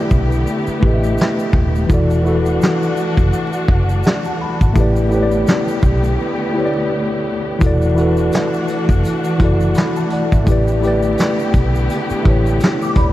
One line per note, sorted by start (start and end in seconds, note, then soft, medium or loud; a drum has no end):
0.00 1.87 D3 medium
0.00 0.80 A3 medium
0.00 4.71 A3 medium
0.00 1.87 B3 medium
0.00 0.82 E4 medium
0.00 0.83 G4 medium
0.00 1.87 G4 medium
0.00 0.85 B4 medium
0.00 1.91 D5 medium
0.00 0.44 E5 medium
0.11 0.44 B1 medium
0.11 kick medium
0.11 shaker soft
0.32 shaker soft
0.47 shaker medium
0.67 muted fingered electric bass stroke soft
0.67 shaker medium
0.80 1.16 A1 medium
0.80 1.58 A3 medium
0.80 1.59 E4 medium
0.80 1.60 G4 medium
0.80 kick loud
0.85 1.61 B4 medium
0.85 0.92 D#5 medium
0.94 1.65 E5 medium
1.04 shaker soft
1.18 snare loud
1.18 shaker medium
1.39 shaker soft
1.53 1.87 D#1 loud
1.53 kick medium
1.75 shaker soft
1.87 2.57 E1 loud
1.87 2.15 E3 medium
1.87 4.72 E3 medium
1.87 4.73 D4 medium
1.87 2.16 E4 medium
1.87 4.72 F#4 medium
1.87 2.17 F#4 medium
1.87 kick loud
1.87 shaker medium
1.92 2.18 A4 medium
1.92 2.19 D5 medium
2.10 shaker soft
2.23 3.26 E3 medium
2.23 3.27 E4 medium
2.23 3.28 F#4 medium
2.23 shaker soft
2.28 3.29 A4 medium
2.28 3.30 B4 medium
2.46 shaker soft
2.61 snare loud
2.61 shaker medium
2.82 shaker soft
2.97 shaker medium
3.17 3.31 F#1 loud
3.17 kick medium
3.17 shaker soft
3.33 shaker medium
3.53 shaker medium
3.68 4.01 F#1 loud
3.68 kick loud
3.89 shaker soft
4.03 4.25 D5 medium
4.03 4.25 F#5 medium
4.03 snare loud
4.03 shaker medium
4.24 4.40 F#5 medium
4.24 4.40 A5 medium
4.24 shaker soft
4.41 4.60 B5 medium
4.61 4.75 G#1 medium
4.61 4.96 F#5 medium
4.61 4.95 A5 medium
4.61 kick medium
4.61 shaker medium
4.73 5.43 A1 loud
4.73 7.59 D3 medium
4.73 5.01 A3 medium
4.73 7.59 A3 medium
4.73 7.59 B3 medium
4.73 5.02 E4 medium
4.73 7.59 G4 medium
4.73 5.03 G4 medium
4.73 kick loud
4.73 shaker medium
4.79 5.04 B4 medium
4.79 5.05 D5 medium
4.96 shaker soft
5.09 6.12 A3 medium
5.09 6.13 E4 medium
5.09 6.14 G4 medium
5.09 shaker soft
5.14 6.15 B4 medium
5.14 5.21 C#5 medium
5.23 6.19 D5 medium
5.31 shaker soft
5.47 snare loud
5.47 shaker medium
5.68 shaker soft
5.83 6.16 B1 medium
5.83 kick medium
5.83 shaker medium
6.04 shaker soft
6.52 7.30 A3 medium
6.52 7.31 E4 medium
6.52 7.32 G4 medium
6.58 7.33 B4 medium
6.58 6.64 C#5 medium
6.66 7.37 D5 medium
7.59 8.29 E1 loud
7.59 7.87 E3 medium
7.59 10.44 E3 medium
7.59 13.13 A3 medium
7.59 10.44 D4 medium
7.59 7.88 E4 medium
7.59 10.44 F#4 medium
7.59 7.89 F#4 medium
7.59 kick loud
7.59 closed hi-hat medium
7.59 shaker medium
7.64 7.90 A4 medium
7.64 7.91 D5 loud
7.82 shaker soft
7.94 8.98 E3 medium
7.94 8.99 E4 medium
7.94 9.00 F#4 medium
7.94 shaker soft
7.98 9.01 A4 medium
7.98 9.02 B4 medium
7.98 closed hi-hat medium
8.17 shaker soft
8.32 snare loud
8.32 closed hi-hat medium
8.32 shaker medium
8.53 shaker soft
8.68 closed hi-hat medium
8.68 shaker medium
8.89 9.03 F#1 loud
8.89 kick medium
8.89 shaker soft
9.05 closed hi-hat medium
9.05 shaker medium
9.24 shaker medium
9.38 9.73 F#1 medium
9.38 10.15 E3 medium
9.38 10.16 E4 medium
9.38 10.17 F#4 medium
9.38 kick loud
9.38 closed hi-hat medium
9.43 10.18 A4 medium
9.43 9.78 D5 medium
9.61 shaker soft
9.75 9.96 B5 medium
9.75 snare loud
9.75 closed hi-hat medium
9.75 shaker medium
9.96 10.11 F#5 medium
9.96 10.11 A5 medium
9.96 shaker soft
10.10 10.32 D5 medium
10.10 10.31 F#5 medium
10.10 closed hi-hat medium
10.32 10.46 G#1 medium
10.32 10.66 E5 medium
10.32 kick medium
10.32 shaker soft
10.44 11.14 A1 loud
10.44 13.13 D3 medium
10.44 10.72 A3 medium
10.44 13.13 B3 medium
10.44 10.73 E4 medium
10.44 13.13 G4 medium
10.44 10.74 G4 medium
10.44 kick loud
10.44 closed hi-hat medium
10.44 shaker medium
10.50 10.75 B4 medium
10.50 10.76 D5 medium
10.68 shaker soft
10.80 11.84 A3 medium
10.80 11.85 E4 medium
10.80 11.86 G4 medium
10.80 closed hi-hat medium
10.80 shaker soft
10.86 11.86 B4 medium
10.86 11.87 D5 medium
11.03 shaker soft
11.18 snare loud
11.18 closed hi-hat medium
11.18 shaker medium
11.39 shaker soft
11.54 11.87 B1 loud
11.54 kick medium
11.54 closed hi-hat medium
11.54 shaker medium
11.75 shaker soft
11.90 closed hi-hat medium
11.90 shaker medium
12.10 muted fingered electric bass stroke soft
12.10 shaker medium
12.23 12.58 A1 medium
12.23 13.01 A3 medium
12.23 13.02 E4 medium
12.23 13.03 G4 medium
12.23 kick loud
12.23 closed hi-hat medium
12.28 13.04 B4 medium
12.28 13.04 C#5 medium
12.46 shaker soft
12.60 snare loud
12.60 closed hi-hat medium
12.60 shaker medium
12.82 12.96 D6 medium
12.82 shaker soft
12.95 13.13 D#1 medium
12.95 13.13 D5 medium
12.95 13.13 B5 medium
12.95 kick medium
12.95 closed hi-hat medium